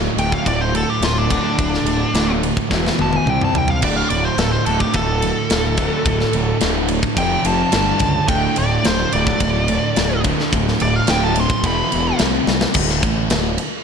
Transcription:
Already playing: overdriven electric guitar D2 A2, distorted electric guitar D2 A2 D3
0.17 fingered electric bass D1, overdriven electric guitar D2 A2 D3, lead electric guitar G5, ride
0.32 lead electric guitar F5, kick
0.46 fingered electric bass D1, overdriven electric guitar D2 A2, lead electric guitar D5, kick, ride
0.61 lead electric guitar C5
0.75 overdriven electric guitar D2 A2, lead electric guitar A4, ride
0.90 lead electric guitar G4
1.01 fingered electric bass D1, overdriven electric guitar D2 A2, lead electric guitar F4, snare, ride
1.18 lead electric guitar D4
1.30 overdriven electric guitar D2 A2 D3, lead electric guitar D4, kick, ride
1.58 fingered electric bass D1, overdriven electric guitar D2 A2, kick, ride
1.62 distorted electric guitar D3
1.74 snare
1.85 fingered electric bass D1, overdriven electric guitar D2 A2, ride
2.14 fingered electric bass D1, overdriven electric guitar D2 A2 D3, snare, ride
2.42 overdriven electric guitar D2 A2, ride
2.57 kick
2.69 fingered electric bass E1, overdriven electric guitar E2 B2 E3, kick, snare
2.74 distorted electric guitar E3
2.87 snare
2.97 fingered electric bass E1, overdriven electric guitar E2 B2 E3, high tom
3.02 lead electric guitar A5
3.13 lead electric guitar G#5, high tom
3.26 fingered electric bass C2, overdriven electric guitar C3 G3 C4, lead electric guitar G5, mid tom
3.41 lead electric guitar A5, mid tom
3.53 fingered electric bass C2, overdriven electric guitar C3 G3, floor tom
3.58 lead electric guitar G5
3.68 lead electric guitar F5, floor tom
3.81 fingered electric bass D1, overdriven electric guitar D2 A2 D3, lead electric guitar D5, kick, crash
3.96 lead electric guitar F5
4.10 fingered electric bass D1, overdriven electric guitar D2 A2, lead electric guitar D5, ride
4.25 lead electric guitar C5
4.38 fingered electric bass D1, overdriven electric guitar D2 A2, lead electric guitar A4, snare, ride
4.52 lead electric guitar C5
4.66 fingered electric bass D1, overdriven electric guitar D2 A2 D3, lead electric guitar A4, ride
4.80 lead electric guitar G4, kick
4.93 fingered electric bass D1, overdriven electric guitar D2 A2, lead electric guitar A4, kick, ride
5.22 overdriven electric guitar D2 A2, ride
5.50 fingered electric bass D1, overdriven electric guitar D2 A2, snare, ride
5.77 overdriven electric guitar D2 A2 D3, kick, ride
6.05 fingered electric bass D1, overdriven electric guitar D2 A2, kick, ride
6.10 distorted electric guitar D3
6.20 snare
6.33 fingered electric bass D1, overdriven electric guitar D2 A2, ride
6.61 fingered electric bass D1, overdriven electric guitar D2 A2 D3, snare, ride
6.88 overdriven electric guitar D2 A2, ride
7.03 kick
7.17 fingered electric bass F1, overdriven electric guitar F2 C3 F3, lead electric guitar G5, kick, ride
7.44 fingered electric bass F1, overdriven electric guitar F2 C3 F3, lead electric guitar A5, ride
7.72 fingered electric bass G1, overdriven electric guitar G2 D3 G3, snare, ride
7.77 distorted electric guitar G3
7.99 fingered electric bass C#2, overdriven electric guitar G2 D3, kick, ride
8.28 fingered electric bass D1, overdriven electric guitar D2 A2 D3, lead electric guitar G5, kick, ride
8.56 fingered electric bass D1, overdriven electric guitar D2 A2, lead electric guitar D5, ride
8.84 fingered electric bass D1, overdriven electric guitar D2 A2, lead electric guitar C5, snare, ride
9.12 fingered electric bass D1, overdriven electric guitar D2 A2 D3, lead electric guitar D5, ride
9.27 kick
9.40 fingered electric bass D1, overdriven electric guitar D2 A2, kick, ride
9.68 overdriven electric guitar D2 A2, ride
9.96 fingered electric bass D1, overdriven electric guitar D2 A2, snare, ride
10.24 overdriven electric guitar D2 A2 D3, kick, ride
10.40 snare
10.53 fingered electric bass D1, overdriven electric guitar D2 A2, distorted electric guitar D3, kick, ride
10.68 snare
10.80 fingered electric bass D1, overdriven electric guitar D2 A2, lead electric guitar D5, ride
10.96 lead electric guitar F5
11.07 fingered electric bass D1, overdriven electric guitar D2 A2 D3, lead electric guitar G5, snare, ride
11.24 lead electric guitar A5
11.36 overdriven electric guitar D2 A2, lead electric guitar C6, ride
11.50 kick
11.63 fingered electric bass E1, overdriven electric guitar E2 B2 E3, lead electric guitar B5, kick, ride
11.92 fingered electric bass E1, overdriven electric guitar E2 B2 E3, ride
12.19 fingered electric bass C2, overdriven electric guitar C3 G3 C4, snare, ride
12.47 fingered electric bass C2, overdriven electric guitar C3 G3, snare
12.61 snare
12.74 fingered electric bass D1, overdriven electric guitar D2, kick, crash
12.90 snare
13.03 fingered electric bass A1, overdriven electric guitar A2, kick, ride
13.30 fingered electric bass D1, overdriven electric guitar D2, snare, ride
13.58 ride

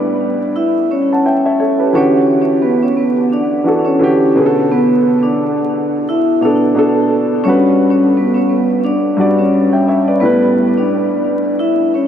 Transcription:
Already playing: grand piano A2 G3 B3 B4, vibraphone D4 D5
0.56 vibraphone E4 E5
0.91 vibraphone C#4 C#5
1.13 grand piano F#5 A5
1.26 grand piano E5 G5
1.46 grand piano C#5 E5
1.60 grand piano A4 C#5
1.80 grand piano G4 B4
1.93 grand piano D3 E3 F#4 G4, vibraphone C#4 C#5
2.62 vibraphone B3 B4
2.83 vibraphone C#4 C#5
2.97 vibraphone B3 B4
3.33 vibraphone D4 D5
3.64 grand piano E3 D4 F#4
3.68 grand piano A4
3.85 vibraphone C#4 C#5
3.99 grand piano D3 E3 F#4
4.03 grand piano G4
4.35 grand piano B2 D3 B3
4.39 grand piano G#4
4.46 grand piano A4
4.72 vibraphone B3 B4
5.23 vibraphone D4 D5
6.09 vibraphone E4 E5
6.41 grand piano B2 B3 D4 A4, vibraphone D4 D5
6.75 grand piano B2 B3 D4 A4
7.44 grand piano G2 G3 F#4, vibraphone C#4 C#5
7.49 grand piano B4
8.17 vibraphone B3 B4
8.35 vibraphone C#4 C#5
8.49 vibraphone B3 B4
8.85 vibraphone D4 D5
9.17 grand piano G2 G3 F#4
9.21 grand piano D5
9.39 vibraphone C#4 C#5
9.73 grand piano E5 G5
9.88 grand piano C#5 E5
10.08 grand piano B4 D5
10.20 grand piano A2 G3 B3, vibraphone B3 B4
10.25 grand piano B4
10.77 vibraphone D4 D5
11.59 vibraphone E4 E5
11.94 vibraphone C#4 C#5

